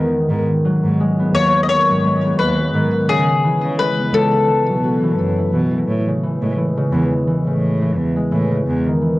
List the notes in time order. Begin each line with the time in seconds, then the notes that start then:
Already playing: D#3 B3
0.29 G#2 D#3
0.65 F#3
0.84 G#2
1.00 G#3
1.20 B3
1.34 D#2 G#3 C#5
1.54 F#3
1.63 D#5
1.69 D#3 C#5
1.88 G#2 F#3
2.04 G#3
2.24 B3
2.39 D#2 G#3 B4
2.59 F#3
2.74 G#2 D#3
3.09 C#3 G#4
3.44 E3
3.63 C#3
3.79 G#3 B4
3.98 B3
4.13 C#2 G#3 A4
4.33 E3
4.48 E3
4.68 B2 F#3
4.84 F#4
5.04 E3
5.18 F#2 A3
5.39 E4
5.53 B2 E3
5.73 E3
5.88 A2
6.08 C#3
6.23 E3
6.42 A2 G#3
6.58 E3
6.77 C#3
6.92 E2 E3
7.12 G#3
7.27 E3
7.47 A2 C#3
7.82 E3
7.97 E2
8.16 G#3
8.32 A2 E3
8.51 C#3
8.67 E2
8.87 D#3
9.02 E3